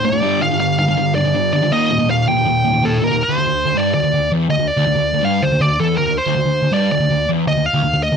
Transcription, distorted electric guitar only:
0.05 0.12 D2 medium
0.05 0.12 A2 loud
0.13 0.21 D2 medium
0.13 0.22 A2 medium
0.22 0.40 G2 loud
0.22 0.40 D3 loud
0.22 0.41 G3 loud
0.41 0.51 G2 medium
0.41 0.50 D3 medium
0.51 0.59 G2 medium
0.51 0.59 D3 medium
0.60 0.77 G2 medium
0.60 0.77 D3 medium
0.79 0.87 G2 medium
0.79 0.87 D3 medium
0.88 0.96 G2 medium
0.88 0.96 D3 medium
0.97 1.14 G2 medium
0.97 1.15 D3 medium
1.16 1.24 G2 medium
1.16 1.24 D3 medium
1.25 1.34 G2 medium
1.25 1.34 D3 medium
1.35 1.52 G2 medium
1.35 1.52 D3 medium
1.54 1.62 G2 medium
1.54 1.62 D3 medium
1.63 1.72 G2 medium
1.63 1.72 D3 medium
1.72 1.90 D#2 medium
1.72 1.90 A#2 loud
1.72 1.90 D#3 loud
1.91 1.99 D#2 medium
1.91 1.98 A#2 medium
1.99 2.07 D#2 medium
1.99 2.08 A#2 medium
2.09 2.26 D#2 medium
2.09 2.26 A#2 medium
2.27 2.36 D#2 medium
2.27 2.36 A#2 medium
2.37 2.44 D#2 medium
2.37 2.44 A#2 medium
2.45 2.63 D#2 medium
2.45 2.63 A#2 medium
2.64 2.72 D#2 medium
2.64 2.72 A#2 medium
2.73 2.81 D#2 medium
2.73 2.82 A#2 medium
2.83 3.00 D#2 medium
2.83 3.00 A#2 medium
3.02 3.11 D#2 medium
3.02 3.10 A#2 medium
3.12 3.21 D#2 medium
3.12 3.21 A#2 medium
3.29 3.37 D2 loud
3.38 3.46 D2 medium
3.48 3.63 D2 medium
3.66 3.75 D2 medium
3.75 3.94 G2 medium
3.94 4.03 D2 medium
4.04 4.13 D2 medium
4.14 4.28 D2 medium
4.32 4.49 E2 loud
4.50 4.58 D2 medium
4.59 4.69 D2 medium
4.77 4.86 D2 loud
4.87 4.95 D2 medium
4.96 5.11 D2 medium
5.14 5.22 D2 medium
5.23 5.42 G2 medium
5.42 5.51 D2 medium
5.52 5.60 D2 medium
5.61 5.76 D2 medium
5.80 5.98 E2 loud
5.99 6.07 D2 medium
6.08 6.17 D2 medium
6.27 6.35 D2 loud
6.36 6.45 D2 medium
6.46 6.60 D2 medium
6.63 6.72 D2 medium
6.72 6.91 G2 medium
6.92 7.00 D2 medium
7.01 7.09 D2 medium
7.10 7.25 D2 medium
7.29 7.47 E2 loud
7.47 7.55 D2 medium
7.57 7.66 D2 medium
7.74 7.82 D2 loud
7.84 7.92 D2 medium
7.93 8.08 D2 medium
8.12 8.17 D2 medium

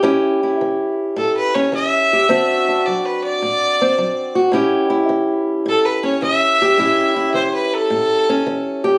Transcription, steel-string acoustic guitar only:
0.03 0.56 A2 medium
0.03 1.54 C#4 medium
0.03 0.41 E4 medium
0.03 2.11 G4 medium
0.43 2.27 E4 medium
0.61 1.13 E3 medium
1.16 1.69 A2 medium
1.55 2.27 C#4 medium
1.72 2.25 E3 medium
2.13 2.28 G4 medium
2.29 2.81 D3 medium
2.29 3.79 C4 medium
2.29 2.67 D4 medium
2.29 4.34 F#4 medium
2.68 4.52 D4 medium
2.87 3.39 F#3 medium
3.42 3.94 A2 medium
3.81 4.53 C4 medium
3.98 4.50 F#3 medium
4.35 4.54 F#4 medium
4.52 5.05 A2 medium
4.52 6.03 C#4 medium
4.52 4.89 E4 medium
4.52 6.61 G4 medium
4.90 6.79 E4 medium
5.09 5.62 E3 medium
5.66 6.18 A2 medium
6.03 6.79 C#4 medium
6.22 6.75 E3 medium
6.62 6.79 G4 medium
6.78 7.31 A2 medium
6.78 8.28 C#4 medium
6.78 7.16 E4 medium
6.78 8.83 G4 medium
7.16 8.98 E4 medium
7.34 7.87 E3 medium
7.90 8.43 A2 medium
8.29 8.98 C#4 medium
8.46 8.98 E3 medium
8.84 8.98 G4 medium

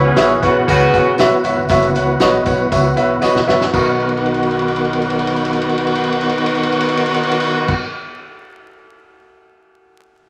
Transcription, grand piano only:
0.16 0.31 F#4 loud
0.16 0.31 B4 medium
0.16 0.31 C#5 loud
0.16 0.31 E5 loud
0.42 0.57 F#4 medium
0.42 0.57 B4 medium
0.42 0.57 C#5 medium
0.42 0.57 F#5 medium
0.68 0.82 F#4 medium
0.68 0.82 B4 medium
0.68 0.83 C#5 medium
0.68 0.83 F#5 medium
0.94 1.08 F#4 medium
0.94 1.08 B4 medium
0.94 1.08 C#5 medium
0.94 1.08 F#5 medium
1.19 1.33 F#4 loud
1.19 1.33 B4 medium
1.19 1.33 C#5 medium
1.19 1.34 E5 loud
1.44 1.59 F#4 medium
1.44 1.59 B4 medium
1.44 1.59 C#5 medium
1.44 1.59 E5 medium
1.70 1.84 F#4 loud
1.70 1.84 B4 medium
1.70 1.85 C#5 medium
1.70 1.85 E5 loud
1.96 2.10 F#4 medium
1.96 2.10 B4 medium
1.96 2.10 C#5 medium
1.96 2.10 F#5 medium
2.20 2.35 F#4 loud
2.20 2.35 B4 loud
2.20 2.36 C#5 loud
2.20 2.35 D#5 loud
2.46 2.60 F#4 medium
2.46 2.61 B4 medium
2.46 2.61 C#5 medium
2.46 2.61 F#5 medium
2.72 2.86 F#4 medium
2.72 2.86 B4 medium
2.72 2.86 C#5 medium
2.72 2.86 E5 medium
2.97 3.11 F#4 medium
2.97 3.11 B4 medium
2.97 3.11 C#5 medium
2.97 3.12 E5 medium
3.22 3.37 F#4 loud
3.22 3.37 B4 loud
3.22 3.37 C#5 medium
3.22 3.37 D#5 loud
3.47 3.62 F#4 medium
3.47 3.62 B4 medium
3.47 3.62 C#5 medium
3.47 3.62 E5 medium
3.72 7.75 B1 medium
3.72 7.74 F#4 medium
3.72 7.74 A#4 medium
3.72 7.75 B4 medium
3.72 7.75 D#5 medium

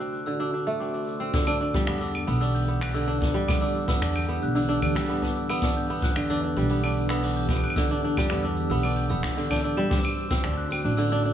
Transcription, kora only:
0.00 0.26 D3 medium
0.00 0.66 A3 medium
0.00 0.80 C4 medium
0.00 0.39 D4 medium
0.27 1.33 D3 medium
0.40 0.53 D4 medium
0.54 0.94 D4 medium
0.67 2.67 A3 loud
0.80 1.20 C4 medium
0.94 1.47 D4 medium
1.20 1.93 C4 medium
1.34 2.93 D3 medium
1.47 1.60 D4 loud
1.61 2.00 D4 medium
1.75 3.00 G3 medium
1.87 2.27 B3 medium
2.01 2.41 D4 medium
2.27 2.68 B3 loud
2.41 3.07 D4 medium
2.68 3.47 B3 medium
2.95 4.54 D3 medium
3.07 3.20 D4 medium
3.21 3.61 D4 medium
3.34 4.60 G3 loud
3.48 3.87 B3 medium
3.61 4.01 D4 medium
3.88 4.28 B3 medium
4.02 4.68 D4 medium
4.29 5.08 B3 medium
4.55 6.15 D3 medium
4.69 4.82 D4 loud
4.83 5.22 D4 medium
4.96 6.21 G3 loud
5.09 5.49 B3 medium
5.22 5.62 D4 medium
5.50 5.90 B3 loud
5.63 6.30 D4 medium
5.90 6.70 B3 medium
6.16 7.76 D3 medium
6.30 6.43 D4 loud
6.44 6.83 D4 medium
6.57 7.82 G3 loud
6.71 7.10 B3 medium
6.84 7.23 D4 medium
7.10 7.50 B3 loud
7.24 7.91 D4 medium
7.50 8.30 B3 medium
7.77 9.36 D3 medium
7.91 8.04 D4 medium
8.04 8.44 D4 medium
8.18 9.42 G3 medium
8.31 8.71 B3 medium
8.44 8.84 D4 medium
8.71 9.10 B3 medium
8.84 9.50 D4 medium
9.10 9.97 B3 medium
9.37 9.96 D3 medium
9.51 9.64 D4 medium
9.64 10.44 D4 medium
9.77 9.96 G3 loud
9.91 10.30 C4 medium
10.31 10.71 C4 loud
10.44 10.84 D4 medium
10.72 11.33 C4 medium
10.85 11.12 D4 medium
10.98 11.33 D3 medium
11.12 11.25 D4 loud
11.25 11.33 D4 medium

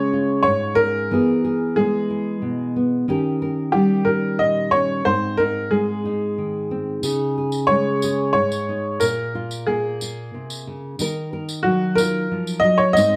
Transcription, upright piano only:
0.00 0.40 C#5 loud
0.43 0.74 C#5 loud
0.75 1.72 A#4 loud
1.76 2.71 G#4 medium
3.72 4.07 G4 medium
4.05 4.40 A#4 medium
4.39 4.74 D#5 medium
4.71 5.03 C#5 loud
5.05 5.40 C5 medium
5.37 5.72 A#4 loud
5.71 6.66 G#4 medium
7.67 8.30 C#5 loud
8.33 9.02 C#5 loud
9.00 9.68 A#4 medium
9.67 10.62 G#4 medium
11.63 11.98 F#4 medium
11.95 12.65 A#4 loud
12.60 12.79 D#5 loud
12.78 12.96 C#5 loud
12.93 13.16 D#5 loud

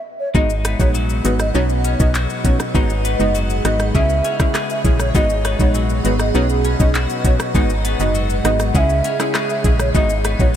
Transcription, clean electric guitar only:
0.35 1.54 G#2 medium
0.35 1.88 D#4 medium
0.65 1.84 B3 medium
0.95 2.14 F#3 medium
1.55 2.74 B2 medium
1.85 2.81 C#4 medium
2.15 2.81 F#3 medium
2.75 4.01 G#2 medium
2.75 4.01 D#4 medium
3.05 4.01 B3 medium
3.35 4.01 F#3 medium
3.95 5.21 C#3 medium
4.25 5.21 C#4 medium
4.55 5.21 G#3 medium
5.15 6.34 G#2 medium
5.15 6.68 D#4 medium
5.45 6.64 B3 medium
5.75 6.94 F#3 medium
6.35 7.54 B2 medium
6.65 7.61 C#4 medium
6.95 7.61 F#3 medium
7.55 8.81 G#2 medium
7.55 8.81 D#4 medium
7.85 8.81 B3 medium
8.15 8.81 F#3 medium
8.75 10.01 C#3 medium
9.05 10.01 C#4 medium
9.35 10.01 G#3 medium
9.95 10.56 G#2 medium
9.95 10.56 D#4 medium
10.25 10.56 B3 medium

